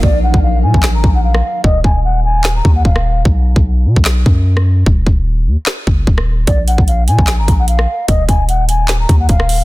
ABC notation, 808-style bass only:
X:1
M:4/4
L:1/16
Q:1/4=149
K:Ebm
V:1 name="808-style bass" clef=bass
B,,,3 B,,,3 B,, B,,,2 A,,, B,,,4 z2 | E,,,2 E,,,8 E,,2 E,,,4 | =B,,,3 B,,,3 =B,, B,,,3 ^F,,6 | E,,,2 E,,,4 E,, z3 G,,,2 E,,,4 |
B,,,3 B,,,3 B,, B,,,2 A,,, B,,,4 z2 | E,,,2 E,,,8 E,,2 E,,,4 |]